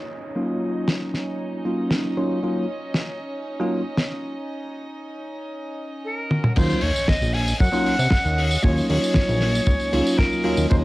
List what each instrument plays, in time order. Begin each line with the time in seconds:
Already playing: violin section C#4 D#4 D#5, downlifter
0.35 tine electric piano F#3 A#3 C#4 D#4 F4
0.88 snare
1.14 snare
1.65 tine electric piano F#3 A#3 C#4 D#4 F4
1.91 snare
2.17 tine electric piano F#3 A#3 C#4 D#4 F4
2.43 tine electric piano F#3 A#3 C#4 D#4 F4
2.94 snare
3.59 tine electric piano F#3 A#3 C#4 D#4 F4
3.97 snare
6.05 flute A#4
6.30 violin section F#4, high tom
6.44 mid tom
6.56 analog synth bass D#2, tine electric piano F#3 A#3 C#4 D#4 F4, violin section C#4 D#5, flute C5, kick, crash, tambourine, impact
6.70 tambourine
6.81 analog synth bass D#2, flute C#5, open hi-hat
6.96 tambourine
7.08 flute D#5, kick, snare, tambourine
7.22 analog synth bass A#1, tambourine
7.34 flute G#5, open hi-hat
7.48 tambourine
7.60 analog synth bass F#2, flute F#5, kick, tambourine
7.72 tine electric piano F#3 A#3 C#4 D#4 F4, tambourine
7.86 open hi-hat
7.99 analog synth bass C3, tambourine
8.11 kick, snare, tambourine
8.25 analog synth bass D#2, tambourine
8.38 open hi-hat
8.51 tambourine
8.62 analog synth bass D#2, tine electric piano F#3 A#3 C#4 D#4 F4, flute C#5, kick, tambourine
8.78 tambourine
8.89 analog synth bass D#2, flute C#5, open hi-hat
9.04 tambourine
9.14 kick, snare, tambourine
9.29 analog synth bass A#1, tambourine
9.41 snare, open hi-hat
9.55 tambourine
9.67 analog synth bass C#2, kick, tambourine
9.80 analog synth bass C#2, tambourine
9.92 analog synth bass C#2, tine electric piano F#3 A#3 C#4 D#4 F4, open hi-hat
10.07 tambourine
10.18 flute A#4, kick, snare
10.33 tambourine
10.44 analog synth bass D#2, tine electric piano F#3 A#3 C#4 D#4 F4, open hi-hat
10.57 analog synth bass D#2, tambourine
10.70 analog synth bass D#2, tine electric piano F#3 A#3 C#4 D#4 F4, flute C5, kick, tambourine